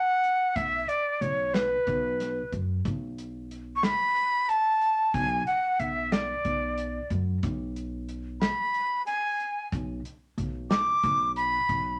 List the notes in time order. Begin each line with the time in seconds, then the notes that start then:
Already playing: F#5
0.24 closed hi-hat
0.56 B1 E5, kick, closed hi-hat
0.89 D5, closed hi-hat
1.21 B1 C#5, closed hi-hat
1.54 B4, snare, closed hi-hat
1.87 B1, kick, closed hi-hat
2.20 snare, closed hi-hat
2.52 F#2, kick, closed hi-hat
2.85 B1, kick, closed hi-hat
3.18 closed hi-hat
3.51 closed hi-hat
3.76 C#6
3.83 B5, snare, closed hi-hat
4.16 closed hi-hat
4.49 A5, closed hi-hat
4.82 closed hi-hat
5.14 B1 G#5, kick, closed hi-hat
5.47 F#5, closed hi-hat
5.79 B1 E5, closed hi-hat
6.12 D5, snare, closed hi-hat
6.45 B1, kick, closed hi-hat
6.78 closed hi-hat
7.10 F#2, kick, closed hi-hat
7.43 B1, kick, closed hi-hat
7.76 closed hi-hat
8.09 closed hi-hat
8.41 B5, snare, closed hi-hat
8.74 closed hi-hat
9.06 G#5, closed hi-hat
9.40 closed hi-hat
9.72 B1, kick, closed hi-hat
10.05 closed hi-hat
10.38 B1, closed hi-hat
10.70 D6, snare, closed hi-hat
11.03 B1, kick, closed hi-hat
11.36 B5, closed hi-hat
11.69 B1, kick, closed hi-hat